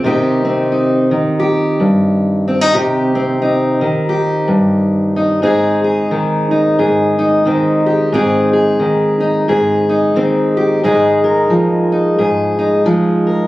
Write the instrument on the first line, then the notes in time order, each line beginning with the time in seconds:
steel-string acoustic guitar
0.04 C3 D#3 C4 D#4 G4
0.45 C4
0.72 D#4
1.11 D#3
1.40 G4
1.80 G2
2.48 C4
2.61 D#4
2.74 C3 G4
3.15 C4
3.42 D#4
3.81 D#3
4.09 G4
4.48 G2
5.16 D#4
5.42 G#2 C4 D#4 G#4
5.84 G#4
6.11 D#3
6.51 D#4
6.79 G#2 G#4
7.19 D#4
7.46 D#3 C4
7.86 G4
8.12 G#2 C4 D#4 G#4
8.53 G#4
8.80 D#3
9.20 D#4
9.48 G#2 G#4
9.89 D#4
10.16 D#3 C4
10.57 G4
10.83 G#2 G#3 D#4 G#4
11.24 A#4
11.50 F3
11.92 D#4
12.18 G#2 G#4
12.59 D#4
12.86 F3 G#3
13.27 A#4